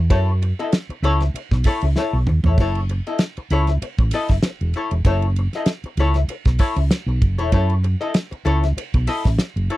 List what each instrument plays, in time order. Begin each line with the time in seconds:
Already playing: fingered electric bass E2
0.10 fingered electric bass F#2, hollow-body jazz guitar E4 A4 C#5, kick, ride bell
0.42 muted hollow-body jazz guitar stroke, ride bell
0.59 hollow-body jazz guitar E4 A4 D#5, ride bell
0.72 snare, ride bell
0.89 muted fingered electric bass stroke, muted hollow-body jazz guitar stroke, ride bell
1.02 fingered electric bass C#2, hollow-body jazz guitar E4 A4 C#5, ride bell
1.20 muted hollow-body jazz guitar stroke, snare, ride bell
1.34 muted fingered electric bass stroke, muted hollow-body jazz guitar stroke, ride bell
1.51 fingered electric bass B1, muted hollow-body jazz guitar stroke, kick, snare
1.64 hollow-body jazz guitar E4 A4 C#5, kick, snare, open hi-hat, ride bell
1.81 fingered electric bass C#2, muted hollow-body jazz guitar stroke, ride bell
1.96 hollow-body jazz guitar E4 A4 C#5, snare
2.13 fingered electric bass B1
2.27 fingered electric bass D#2, muted hollow-body jazz guitar stroke, mid tom
2.43 fingered electric bass E2, hollow-body jazz guitar E4 A4 C#5, floor tom
2.58 fingered electric bass F#1, hollow-body jazz guitar E4 A4 C#5, kick, crash
2.75 ride bell
2.89 muted hollow-body jazz guitar stroke, ride bell
3.07 hollow-body jazz guitar E4 A4 D#5, ride bell
3.18 snare, ride bell
3.37 muted fingered electric bass stroke, muted hollow-body jazz guitar stroke, ride bell
3.50 fingered electric bass C#2, hollow-body jazz guitar E4 A4 C#5, ride bell
3.67 muted hollow-body jazz guitar stroke, snare, ride bell
3.82 muted fingered electric bass stroke, muted hollow-body jazz guitar stroke, ride bell
3.98 fingered electric bass A1, muted hollow-body jazz guitar stroke, kick, ride bell
4.11 hollow-body jazz guitar E4 A4 D#5, snare, open hi-hat, ride bell
4.29 fingered electric bass F#1, muted hollow-body jazz guitar stroke, kick, snare, ride bell
4.43 muted hollow-body jazz guitar stroke, snare, hi-hat pedal, ride bell
4.61 fingered electric bass E1, ride bell
4.74 hollow-body jazz guitar E4 A4 C#5, ride bell
4.91 fingered electric bass E1, muted hollow-body jazz guitar stroke, ride bell
5.05 fingered electric bass F#1, hollow-body jazz guitar E4 A4 C#5, kick, ride bell
5.22 ride bell
5.36 muted hollow-body jazz guitar stroke, ride bell
5.53 hollow-body jazz guitar E4 A4 D#5, snare, ride bell
5.66 snare, ride bell
5.84 muted fingered electric bass stroke, muted hollow-body jazz guitar stroke, ride bell
5.97 fingered electric bass C#2, hollow-body jazz guitar E4 A4 C#5, ride bell
6.14 muted hollow-body jazz guitar stroke, snare, ride bell
6.28 muted fingered electric bass stroke, muted hollow-body jazz guitar stroke, ride bell
6.45 fingered electric bass B1, muted hollow-body jazz guitar stroke, kick, snare, ride bell
6.59 hollow-body jazz guitar E4 A4 C#5, kick, snare, open hi-hat, ride bell
6.76 fingered electric bass C#2, muted hollow-body jazz guitar stroke, ride bell
6.91 muted hollow-body jazz guitar stroke, snare, hi-hat pedal, ride bell
7.06 fingered electric bass B1, muted hollow-body jazz guitar stroke
7.22 fingered electric bass F#1, kick, ride bell
7.38 fingered electric bass E1, hollow-body jazz guitar E4 A4 C#5, ride bell
7.52 fingered electric bass F#2, hollow-body jazz guitar E4 A4 C#5, kick, ride bell
7.70 ride bell
7.84 muted hollow-body jazz guitar stroke, ride bell
8.01 hollow-body jazz guitar E4 A4 D#5, ride bell
8.14 snare, ride bell
8.31 muted hollow-body jazz guitar stroke, muted fingered electric bass stroke, ride bell
8.45 fingered electric bass C#2, hollow-body jazz guitar E4 A4 C#5, ride bell
8.64 muted hollow-body jazz guitar stroke, snare, ride bell
8.77 muted fingered electric bass stroke, muted hollow-body jazz guitar stroke, ride bell
8.94 fingered electric bass B1, muted hollow-body jazz guitar stroke, kick, ride bell
9.07 hollow-body jazz guitar E4 A4 D#5, snare, open hi-hat, ride bell
9.24 fingered electric bass A1, muted hollow-body jazz guitar stroke, kick, snare, ride bell
9.38 muted fingered electric bass stroke, muted hollow-body jazz guitar stroke, snare, hi-hat pedal, ride bell
9.56 fingered electric bass F#1, ride bell
9.70 hollow-body jazz guitar E4 A4 C#5, ride bell